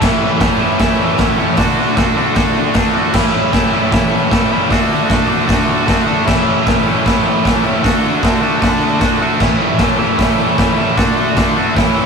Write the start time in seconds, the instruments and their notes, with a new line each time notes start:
0.00 overdriven electric guitar A2 E3 A3 C#4 E4, kick, snare, crash
0.39 overdriven electric guitar A2 E3 A3 C#4 E4, kick, snare, open hi-hat
0.59 overdriven electric guitar A2 E3 A3 C#4 E4
0.79 overdriven electric guitar A2 E3 A3 C#4 E4, kick, snare, open hi-hat
1.18 overdriven electric guitar A2 E3 A3 C#4 E4, kick, snare, open hi-hat
1.37 overdriven electric guitar A2 E3 A3 C#4 E4
1.57 overdriven electric guitar D3 A3 D4 F#4, kick, snare, open hi-hat
1.96 overdriven electric guitar D3 A3 D4 F#4, kick, snare, open hi-hat
2.16 overdriven electric guitar D3 A3 D4 F#4
2.35 overdriven electric guitar D3 A3 D4 F#4, kick, snare, open hi-hat
2.74 overdriven electric guitar D3 A3 D4 F#4, kick, snare, open hi-hat
2.95 overdriven electric guitar D3 A3 D4 F#4
3.13 overdriven electric guitar A2 E3 A3 C#4 E4, kick, snare, crash
3.52 overdriven electric guitar A2 E3 A3 C#4 E4, kick, snare, open hi-hat
3.72 overdriven electric guitar A2 E3 A3 C#4 E4
3.91 overdriven electric guitar A2 E3 A3 C#4 E4, kick, snare, open hi-hat
4.31 overdriven electric guitar A2 E3 A3 C#4 E4, kick, snare, open hi-hat
4.51 overdriven electric guitar A2 E3 A3 C#4 E4
4.70 overdriven electric guitar D3 A3 D4 F#4, kick, snare, open hi-hat
5.10 overdriven electric guitar D3 A3 D4 F#4, kick, snare, open hi-hat
5.29 overdriven electric guitar D3 A3 D4 F#4
5.47 overdriven electric guitar D3 A3 D4 F#4, kick, snare, open hi-hat
5.86 overdriven electric guitar D3 A3 D4 F#4, kick, snare, open hi-hat
6.06 overdriven electric guitar D3 A3 D4 F#4
6.25 overdriven electric guitar A2 E3 A3 C#4 E4, kick, snare, crash
6.65 overdriven electric guitar A2 E3 A3 C#4 E4, kick, snare, open hi-hat
6.86 overdriven electric guitar A2 E3 A3 C#4 E4
7.05 overdriven electric guitar A2 E3 A3 C#4 E4, kick, snare, open hi-hat
7.44 overdriven electric guitar A2 E3 A3 C#4 E4, kick, snare, open hi-hat
7.63 overdriven electric guitar A2 E3 A3 C#4 E4
7.82 overdriven electric guitar D3 A3 D4 F#4, kick, snare, open hi-hat
8.23 overdriven electric guitar D3 A3 D4 F#4, kick, snare, open hi-hat
8.41 overdriven electric guitar D3 A3 D4 F#4
8.61 overdriven electric guitar D3 A3 D4 F#4, kick, snare, open hi-hat
9.00 overdriven electric guitar D3 A3 D4 F#4, kick, snare, open hi-hat
9.20 overdriven electric guitar D3 A3 D4 F#4
9.40 overdriven electric guitar A2 E3 A3 C#4 E4, kick, snare, crash
9.78 overdriven electric guitar A2 E3 A3 C#4 E4, kick, snare, open hi-hat
9.98 overdriven electric guitar A2 E3 A3 C#4 E4
10.18 overdriven electric guitar A2 E3 A3 C#4 E4, kick, snare, open hi-hat
10.57 overdriven electric guitar A2 E3 A3 C#4 E4, kick, snare, open hi-hat
10.78 overdriven electric guitar A2 E3 A3 C#4 E4
10.97 overdriven electric guitar D3 A3 D4 F#4, kick, snare, open hi-hat
11.36 overdriven electric guitar D3 A3 D4 F#4, kick, snare, open hi-hat
11.56 overdriven electric guitar D3 A3 D4 F#4
11.76 overdriven electric guitar A2 E3 A3 C#4 E4, kick, snare, open hi-hat